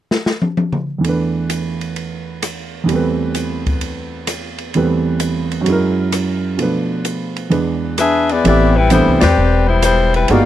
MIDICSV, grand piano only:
0, 0, Header, 1, 2, 480
1, 0, Start_track
1, 0, Key_signature, 0, "minor"
1, 0, Tempo, 462606
1, 1083, Time_signature, 4, 2, 24, 8
1, 10847, End_track
2, 0, Start_track
2, 0, Title_t, "Grand piano"
2, 0, Program_c, 0, 0
2, 1022, Note_on_c, 0, 40, 37
2, 1047, Note_on_c, 0, 52, 37
2, 1074, Note_on_c, 0, 57, 35
2, 1107, Note_on_c, 0, 62, 38
2, 1129, Note_on_c, 0, 71, 47
2, 2929, Note_off_c, 0, 40, 0
2, 2945, Note_on_c, 0, 40, 45
2, 2952, Note_off_c, 0, 52, 0
2, 2968, Note_on_c, 0, 52, 47
2, 2993, Note_on_c, 0, 55, 43
2, 3000, Note_off_c, 0, 57, 0
2, 3016, Note_on_c, 0, 57, 45
2, 3017, Note_off_c, 0, 62, 0
2, 3028, Note_off_c, 0, 71, 0
2, 3038, Note_on_c, 0, 60, 43
2, 3066, Note_on_c, 0, 71, 54
2, 4896, Note_off_c, 0, 40, 0
2, 4907, Note_off_c, 0, 52, 0
2, 4920, Note_off_c, 0, 55, 0
2, 4928, Note_off_c, 0, 57, 0
2, 4930, Note_on_c, 0, 40, 45
2, 4932, Note_off_c, 0, 60, 0
2, 4936, Note_off_c, 0, 71, 0
2, 4936, Note_on_c, 0, 52, 43
2, 4943, Note_on_c, 0, 57, 44
2, 4945, Note_on_c, 0, 55, 42
2, 4948, Note_on_c, 0, 60, 43
2, 4952, Note_on_c, 0, 71, 52
2, 5824, Note_on_c, 0, 42, 50
2, 5854, Note_on_c, 0, 54, 51
2, 5888, Note_off_c, 0, 40, 0
2, 5889, Note_on_c, 0, 56, 44
2, 5891, Note_off_c, 0, 52, 0
2, 5895, Note_off_c, 0, 57, 0
2, 5896, Note_off_c, 0, 55, 0
2, 5897, Note_off_c, 0, 60, 0
2, 5899, Note_off_c, 0, 71, 0
2, 5911, Note_on_c, 0, 64, 50
2, 5938, Note_on_c, 0, 70, 59
2, 6815, Note_off_c, 0, 42, 0
2, 6821, Note_on_c, 0, 47, 39
2, 6830, Note_off_c, 0, 54, 0
2, 6834, Note_on_c, 0, 53, 39
2, 6848, Note_off_c, 0, 56, 0
2, 6849, Note_on_c, 0, 57, 39
2, 6858, Note_on_c, 0, 62, 36
2, 6859, Note_off_c, 0, 64, 0
2, 6872, Note_off_c, 0, 70, 0
2, 6872, Note_on_c, 0, 71, 44
2, 7778, Note_off_c, 0, 62, 0
2, 7782, Note_off_c, 0, 71, 0
2, 7782, Note_on_c, 0, 40, 46
2, 7786, Note_on_c, 0, 52, 38
2, 7794, Note_off_c, 0, 47, 0
2, 7794, Note_on_c, 0, 56, 44
2, 7794, Note_on_c, 0, 62, 42
2, 7798, Note_on_c, 0, 71, 47
2, 7800, Note_off_c, 0, 53, 0
2, 7807, Note_off_c, 0, 57, 0
2, 8754, Note_off_c, 0, 40, 0
2, 8756, Note_off_c, 0, 52, 0
2, 8760, Note_off_c, 0, 56, 0
2, 8760, Note_off_c, 0, 62, 0
2, 8762, Note_off_c, 0, 71, 0
2, 8773, Note_on_c, 0, 52, 54
2, 8774, Note_on_c, 0, 59, 47
2, 8775, Note_on_c, 0, 57, 50
2, 8777, Note_on_c, 0, 67, 58
2, 8778, Note_on_c, 0, 60, 53
2, 9062, Note_off_c, 0, 52, 0
2, 9062, Note_off_c, 0, 59, 0
2, 9063, Note_off_c, 0, 57, 0
2, 9064, Note_off_c, 0, 60, 0
2, 9064, Note_off_c, 0, 67, 0
2, 9247, Note_on_c, 0, 52, 52
2, 9248, Note_on_c, 0, 57, 53
2, 9248, Note_on_c, 0, 59, 49
2, 9248, Note_on_c, 0, 62, 56
2, 9253, Note_on_c, 0, 60, 49
2, 9539, Note_off_c, 0, 52, 0
2, 9539, Note_off_c, 0, 57, 0
2, 9539, Note_off_c, 0, 59, 0
2, 9539, Note_off_c, 0, 62, 0
2, 9542, Note_off_c, 0, 60, 0
2, 10689, Note_on_c, 0, 58, 56
2, 10690, Note_on_c, 0, 56, 62
2, 10694, Note_on_c, 0, 63, 58
2, 10694, Note_on_c, 0, 66, 70
2, 10696, Note_on_c, 0, 59, 58
2, 10847, Note_off_c, 0, 56, 0
2, 10847, Note_off_c, 0, 58, 0
2, 10847, Note_off_c, 0, 59, 0
2, 10847, Note_off_c, 0, 63, 0
2, 10847, Note_off_c, 0, 66, 0
2, 10847, End_track
0, 0, End_of_file